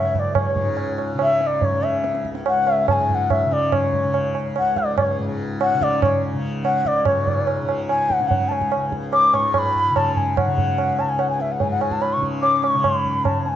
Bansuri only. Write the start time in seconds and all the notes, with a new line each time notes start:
Already playing: E5
0.16 D5 E5
0.37 C#5
1.23 E5
1.43 D5 E5
1.65 C#5
1.85 E5
2.48 F#5
2.74 E5
2.89 G#5 A5
3.11 F#5 G#5
3.31 E5
3.53 D5
3.75 C#5
4.58 F#5
4.78 D5
4.98 C#5
5.61 F#5
5.83 D5
6.04 C#5
6.65 F#5
6.87 D5
7.08 C#5
7.90 G#5
8.15 F#5
8.28 F#5
8.49 A5
8.53 G#5
9.14 D6
9.34 C#6
9.55 B5 C#6
9.97 A5
10.17 G#5
10.37 F#5
11.00 A5
11.09 G#5
11.20 F#5
11.30 G#5
11.41 E5
11.52 F#5
11.61 G#5
11.71 F#5
11.81 G#5
11.92 A5
12.02 B5
12.13 C#6
12.43 D6
12.63 C#6
12.84 B5
13.25 A5
13.45 G#5 A5